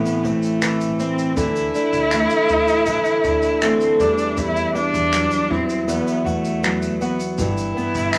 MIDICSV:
0, 0, Header, 1, 6, 480
1, 0, Start_track
1, 0, Tempo, 751503
1, 878, Time_signature, 4, 2, 24, 8
1, 5227, End_track
2, 0, Start_track
2, 0, Title_t, "Cello"
2, 0, Program_c, 0, 42
2, 0, Note_on_c, 0, 59, 83
2, 162, Note_on_c, 0, 57, 92
2, 172, Note_off_c, 0, 59, 0
2, 638, Note_on_c, 0, 60, 83
2, 647, Note_off_c, 0, 57, 0
2, 872, Note_off_c, 0, 60, 0
2, 876, Note_on_c, 0, 64, 105
2, 2319, Note_on_c, 0, 60, 85
2, 2329, Note_off_c, 0, 64, 0
2, 2556, Note_on_c, 0, 62, 88
2, 2565, Note_off_c, 0, 60, 0
2, 2793, Note_on_c, 0, 64, 92
2, 2803, Note_off_c, 0, 62, 0
2, 3030, Note_off_c, 0, 64, 0
2, 3034, Note_on_c, 0, 62, 99
2, 3515, Note_on_c, 0, 60, 83
2, 3525, Note_off_c, 0, 62, 0
2, 3752, Note_off_c, 0, 60, 0
2, 3755, Note_on_c, 0, 59, 80
2, 3995, Note_on_c, 0, 57, 90
2, 4005, Note_off_c, 0, 59, 0
2, 4476, Note_off_c, 0, 57, 0
2, 4486, Note_on_c, 0, 59, 81
2, 4592, Note_off_c, 0, 59, 0
2, 4734, Note_on_c, 0, 64, 95
2, 5227, Note_off_c, 0, 64, 0
2, 5227, End_track
3, 0, Start_track
3, 0, Title_t, "Clean electric guitar"
3, 0, Program_c, 1, 27
3, 0, Note_on_c, 1, 52, 60
3, 0, Note_on_c, 1, 57, 52
3, 160, Note_on_c, 1, 60, 59
3, 398, Note_off_c, 1, 52, 0
3, 401, Note_on_c, 1, 52, 54
3, 631, Note_off_c, 1, 60, 0
3, 639, Note_on_c, 1, 60, 58
3, 874, Note_off_c, 1, 52, 0
3, 876, Note_on_c, 1, 52, 69
3, 926, Note_off_c, 1, 60, 0
3, 1118, Note_off_c, 1, 57, 0
3, 1121, Note_on_c, 1, 57, 56
3, 1357, Note_off_c, 1, 52, 0
3, 1359, Note_on_c, 1, 52, 53
3, 1590, Note_off_c, 1, 57, 0
3, 1598, Note_on_c, 1, 57, 50
3, 1833, Note_off_c, 1, 52, 0
3, 1836, Note_on_c, 1, 52, 61
3, 2077, Note_on_c, 1, 62, 61
3, 2317, Note_off_c, 1, 52, 0
3, 2320, Note_on_c, 1, 52, 55
3, 2557, Note_off_c, 1, 52, 0
3, 2560, Note_on_c, 1, 55, 71
3, 2605, Note_off_c, 1, 62, 0
3, 2606, Note_off_c, 1, 57, 0
3, 2796, Note_off_c, 1, 55, 0
3, 2799, Note_on_c, 1, 55, 73
3, 3037, Note_on_c, 1, 64, 53
3, 3516, Note_off_c, 1, 64, 0
3, 3519, Note_on_c, 1, 64, 52
3, 3758, Note_on_c, 1, 59, 63
3, 3996, Note_on_c, 1, 66, 57
3, 4236, Note_off_c, 1, 59, 0
3, 4239, Note_on_c, 1, 59, 58
3, 4477, Note_off_c, 1, 66, 0
3, 4483, Note_on_c, 1, 66, 61
3, 4718, Note_off_c, 1, 55, 0
3, 4721, Note_on_c, 1, 52, 72
3, 4768, Note_off_c, 1, 66, 0
3, 4959, Note_off_c, 1, 59, 0
3, 4961, Note_on_c, 1, 59, 54
3, 5200, Note_off_c, 1, 52, 0
3, 5203, Note_on_c, 1, 52, 54
3, 5227, Note_off_c, 1, 52, 0
3, 5227, Note_off_c, 1, 59, 0
3, 5227, Note_off_c, 1, 64, 0
3, 5227, End_track
4, 0, Start_track
4, 0, Title_t, "Steel-string acoustic guitar"
4, 0, Program_c, 2, 25
4, 0, Note_on_c, 2, 45, 68
4, 0, Note_on_c, 2, 52, 65
4, 0, Note_on_c, 2, 57, 51
4, 0, Note_on_c, 2, 60, 52
4, 0, Note_on_c, 2, 64, 58
4, 394, Note_off_c, 2, 52, 0
4, 396, Note_on_c, 2, 52, 58
4, 632, Note_off_c, 2, 60, 0
4, 640, Note_on_c, 2, 60, 52
4, 869, Note_off_c, 2, 52, 0
4, 872, Note_on_c, 2, 50, 72
4, 926, Note_off_c, 2, 45, 0
4, 927, Note_off_c, 2, 60, 0
4, 957, Note_off_c, 2, 57, 0
4, 1117, Note_on_c, 2, 62, 55
4, 1136, Note_off_c, 2, 64, 0
4, 1363, Note_on_c, 2, 57, 61
4, 1599, Note_on_c, 2, 64, 61
4, 1828, Note_off_c, 2, 50, 0
4, 1836, Note_on_c, 2, 50, 69
4, 2306, Note_off_c, 2, 57, 0
4, 2314, Note_on_c, 2, 57, 63
4, 2553, Note_on_c, 2, 40, 69
4, 2604, Note_off_c, 2, 57, 0
4, 2605, Note_off_c, 2, 50, 0
4, 2605, Note_off_c, 2, 62, 0
4, 2779, Note_off_c, 2, 40, 0
4, 2787, Note_on_c, 2, 40, 72
4, 3034, Note_on_c, 2, 59, 56
4, 3278, Note_on_c, 2, 54, 65
4, 3297, Note_off_c, 2, 64, 0
4, 3515, Note_on_c, 2, 64, 58
4, 3747, Note_off_c, 2, 40, 0
4, 3755, Note_on_c, 2, 40, 74
4, 4230, Note_off_c, 2, 54, 0
4, 4237, Note_on_c, 2, 54, 64
4, 4475, Note_off_c, 2, 59, 0
4, 4477, Note_on_c, 2, 59, 55
4, 4716, Note_off_c, 2, 40, 0
4, 4727, Note_on_c, 2, 43, 70
4, 4765, Note_off_c, 2, 54, 0
4, 4960, Note_off_c, 2, 59, 0
4, 4963, Note_on_c, 2, 59, 57
4, 5202, Note_on_c, 2, 52, 65
4, 5227, Note_off_c, 2, 43, 0
4, 5227, Note_off_c, 2, 52, 0
4, 5227, Note_off_c, 2, 59, 0
4, 5227, Note_off_c, 2, 64, 0
4, 5227, End_track
5, 0, Start_track
5, 0, Title_t, "Upright bass"
5, 0, Program_c, 3, 32
5, 150, Note_on_c, 3, 33, 89
5, 547, Note_off_c, 3, 33, 0
5, 873, Note_on_c, 3, 38, 96
5, 1072, Note_off_c, 3, 38, 0
5, 1232, Note_on_c, 3, 38, 91
5, 1431, Note_off_c, 3, 38, 0
5, 1593, Note_on_c, 3, 38, 89
5, 1890, Note_off_c, 3, 38, 0
5, 2070, Note_on_c, 3, 38, 87
5, 2466, Note_off_c, 3, 38, 0
5, 2550, Note_on_c, 3, 40, 89
5, 2947, Note_off_c, 3, 40, 0
5, 3153, Note_on_c, 3, 40, 92
5, 3352, Note_off_c, 3, 40, 0
5, 3515, Note_on_c, 3, 40, 79
5, 3811, Note_off_c, 3, 40, 0
5, 3988, Note_on_c, 3, 40, 89
5, 4386, Note_off_c, 3, 40, 0
5, 4714, Note_on_c, 3, 31, 90
5, 4912, Note_off_c, 3, 31, 0
5, 5077, Note_on_c, 3, 31, 84
5, 5227, Note_off_c, 3, 31, 0
5, 5227, End_track
6, 0, Start_track
6, 0, Title_t, "Drums"
6, 36, Note_on_c, 9, 82, 46
6, 37, Note_off_c, 9, 82, 0
6, 37, Note_on_c, 9, 82, 40
6, 101, Note_off_c, 9, 82, 0
6, 156, Note_on_c, 9, 82, 39
6, 220, Note_off_c, 9, 82, 0
6, 272, Note_on_c, 9, 82, 43
6, 284, Note_off_c, 9, 82, 0
6, 284, Note_on_c, 9, 82, 38
6, 348, Note_off_c, 9, 82, 0
6, 393, Note_on_c, 9, 82, 62
6, 396, Note_off_c, 9, 82, 0
6, 396, Note_on_c, 9, 82, 62
6, 397, Note_on_c, 9, 26, 101
6, 460, Note_off_c, 9, 82, 0
6, 461, Note_off_c, 9, 26, 0
6, 515, Note_on_c, 9, 82, 43
6, 516, Note_off_c, 9, 82, 0
6, 516, Note_on_c, 9, 82, 44
6, 580, Note_off_c, 9, 82, 0
6, 636, Note_on_c, 9, 82, 45
6, 700, Note_off_c, 9, 82, 0
6, 755, Note_on_c, 9, 82, 48
6, 757, Note_off_c, 9, 82, 0
6, 757, Note_on_c, 9, 82, 49
6, 821, Note_off_c, 9, 82, 0
6, 872, Note_on_c, 9, 82, 56
6, 875, Note_off_c, 9, 82, 0
6, 875, Note_on_c, 9, 36, 94
6, 875, Note_on_c, 9, 82, 63
6, 939, Note_off_c, 9, 36, 0
6, 939, Note_off_c, 9, 82, 0
6, 994, Note_on_c, 9, 82, 48
6, 996, Note_off_c, 9, 82, 0
6, 996, Note_on_c, 9, 82, 46
6, 1060, Note_off_c, 9, 82, 0
6, 1114, Note_on_c, 9, 82, 47
6, 1119, Note_off_c, 9, 82, 0
6, 1119, Note_on_c, 9, 82, 43
6, 1183, Note_off_c, 9, 82, 0
6, 1233, Note_on_c, 9, 82, 49
6, 1237, Note_off_c, 9, 82, 0
6, 1237, Note_on_c, 9, 82, 47
6, 1301, Note_off_c, 9, 82, 0
6, 1349, Note_on_c, 9, 82, 60
6, 1350, Note_on_c, 9, 26, 88
6, 1352, Note_off_c, 9, 82, 0
6, 1352, Note_on_c, 9, 82, 68
6, 1414, Note_off_c, 9, 26, 0
6, 1415, Note_off_c, 9, 82, 0
6, 1465, Note_on_c, 9, 82, 48
6, 1471, Note_off_c, 9, 82, 0
6, 1471, Note_on_c, 9, 82, 55
6, 1535, Note_off_c, 9, 82, 0
6, 1589, Note_on_c, 9, 82, 51
6, 1653, Note_off_c, 9, 82, 0
6, 1709, Note_on_c, 9, 82, 50
6, 1710, Note_off_c, 9, 82, 0
6, 1710, Note_on_c, 9, 82, 44
6, 1774, Note_off_c, 9, 82, 0
6, 1827, Note_on_c, 9, 82, 67
6, 1833, Note_on_c, 9, 36, 74
6, 1891, Note_off_c, 9, 82, 0
6, 1897, Note_off_c, 9, 36, 0
6, 1945, Note_on_c, 9, 82, 46
6, 1953, Note_off_c, 9, 82, 0
6, 1953, Note_on_c, 9, 82, 39
6, 2017, Note_off_c, 9, 82, 0
6, 2070, Note_on_c, 9, 82, 46
6, 2072, Note_off_c, 9, 82, 0
6, 2072, Note_on_c, 9, 82, 39
6, 2136, Note_off_c, 9, 82, 0
6, 2187, Note_on_c, 9, 82, 45
6, 2197, Note_off_c, 9, 82, 0
6, 2197, Note_on_c, 9, 82, 40
6, 2261, Note_off_c, 9, 82, 0
6, 2309, Note_on_c, 9, 82, 63
6, 2312, Note_off_c, 9, 82, 0
6, 2312, Note_on_c, 9, 26, 103
6, 2312, Note_on_c, 9, 82, 59
6, 2376, Note_off_c, 9, 26, 0
6, 2376, Note_off_c, 9, 82, 0
6, 2430, Note_on_c, 9, 82, 44
6, 2432, Note_off_c, 9, 82, 0
6, 2432, Note_on_c, 9, 82, 46
6, 2496, Note_off_c, 9, 82, 0
6, 2554, Note_on_c, 9, 82, 48
6, 2555, Note_off_c, 9, 82, 0
6, 2555, Note_on_c, 9, 82, 44
6, 2619, Note_off_c, 9, 82, 0
6, 2671, Note_on_c, 9, 82, 46
6, 2735, Note_off_c, 9, 82, 0
6, 2792, Note_on_c, 9, 82, 54
6, 2793, Note_off_c, 9, 82, 0
6, 2793, Note_on_c, 9, 82, 65
6, 2794, Note_on_c, 9, 36, 103
6, 2856, Note_off_c, 9, 82, 0
6, 2858, Note_off_c, 9, 36, 0
6, 2912, Note_on_c, 9, 82, 45
6, 2915, Note_off_c, 9, 82, 0
6, 2915, Note_on_c, 9, 82, 44
6, 2979, Note_off_c, 9, 82, 0
6, 3036, Note_on_c, 9, 82, 40
6, 3100, Note_off_c, 9, 82, 0
6, 3156, Note_on_c, 9, 82, 49
6, 3158, Note_off_c, 9, 82, 0
6, 3158, Note_on_c, 9, 82, 47
6, 3222, Note_off_c, 9, 82, 0
6, 3274, Note_on_c, 9, 82, 61
6, 3275, Note_off_c, 9, 82, 0
6, 3275, Note_on_c, 9, 26, 93
6, 3275, Note_on_c, 9, 82, 65
6, 3339, Note_off_c, 9, 26, 0
6, 3339, Note_off_c, 9, 82, 0
6, 3389, Note_on_c, 9, 82, 51
6, 3400, Note_off_c, 9, 82, 0
6, 3400, Note_on_c, 9, 82, 56
6, 3464, Note_off_c, 9, 82, 0
6, 3518, Note_on_c, 9, 36, 79
6, 3582, Note_off_c, 9, 36, 0
6, 3635, Note_on_c, 9, 82, 46
6, 3638, Note_off_c, 9, 82, 0
6, 3638, Note_on_c, 9, 82, 50
6, 3702, Note_off_c, 9, 82, 0
6, 3757, Note_on_c, 9, 82, 69
6, 3761, Note_off_c, 9, 82, 0
6, 3761, Note_on_c, 9, 82, 60
6, 3825, Note_off_c, 9, 82, 0
6, 3879, Note_on_c, 9, 82, 47
6, 3880, Note_off_c, 9, 82, 0
6, 3880, Note_on_c, 9, 82, 41
6, 3944, Note_off_c, 9, 82, 0
6, 3999, Note_on_c, 9, 82, 40
6, 4063, Note_off_c, 9, 82, 0
6, 4117, Note_on_c, 9, 82, 47
6, 4122, Note_off_c, 9, 82, 0
6, 4122, Note_on_c, 9, 82, 41
6, 4186, Note_off_c, 9, 82, 0
6, 4235, Note_on_c, 9, 82, 64
6, 4240, Note_off_c, 9, 82, 0
6, 4240, Note_on_c, 9, 82, 63
6, 4243, Note_on_c, 9, 26, 101
6, 4304, Note_off_c, 9, 82, 0
6, 4307, Note_off_c, 9, 26, 0
6, 4356, Note_on_c, 9, 82, 48
6, 4357, Note_off_c, 9, 82, 0
6, 4357, Note_on_c, 9, 82, 46
6, 4421, Note_off_c, 9, 82, 0
6, 4478, Note_on_c, 9, 82, 41
6, 4482, Note_off_c, 9, 82, 0
6, 4482, Note_on_c, 9, 82, 46
6, 4546, Note_off_c, 9, 82, 0
6, 4597, Note_on_c, 9, 82, 50
6, 4661, Note_off_c, 9, 82, 0
6, 4712, Note_on_c, 9, 82, 65
6, 4717, Note_on_c, 9, 36, 95
6, 4718, Note_off_c, 9, 82, 0
6, 4718, Note_on_c, 9, 82, 52
6, 4781, Note_off_c, 9, 36, 0
6, 4782, Note_off_c, 9, 82, 0
6, 4837, Note_on_c, 9, 82, 44
6, 4840, Note_off_c, 9, 82, 0
6, 4840, Note_on_c, 9, 82, 45
6, 4904, Note_off_c, 9, 82, 0
6, 4966, Note_on_c, 9, 82, 44
6, 5030, Note_off_c, 9, 82, 0
6, 5076, Note_on_c, 9, 82, 51
6, 5088, Note_off_c, 9, 82, 0
6, 5088, Note_on_c, 9, 82, 44
6, 5152, Note_off_c, 9, 82, 0
6, 5192, Note_on_c, 9, 82, 62
6, 5193, Note_on_c, 9, 26, 85
6, 5203, Note_off_c, 9, 82, 0
6, 5203, Note_on_c, 9, 82, 63
6, 5227, Note_off_c, 9, 26, 0
6, 5227, Note_off_c, 9, 82, 0
6, 5227, End_track
0, 0, End_of_file